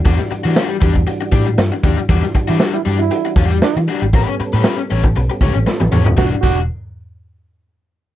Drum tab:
CC |----------------|----------------|----------------|--x-------------|
HH |xxxx-xxxxxxx-xxx|xxxx-xxxxxxx-xxx|xxxx-xoxxxxx----|----------------|
SD |-o--o-------o---|-o--o-------o---|----o-------o---|o---------------|
T1 |----------------|----------------|-------------o--|----------------|
T2 |----------------|----------------|--------------o-|----------------|
FT |----------------|----------------|---------------o|----------------|
BD |o-----oo--o---o-|o-o-------o-----|o------o--o-----|o-o-------------|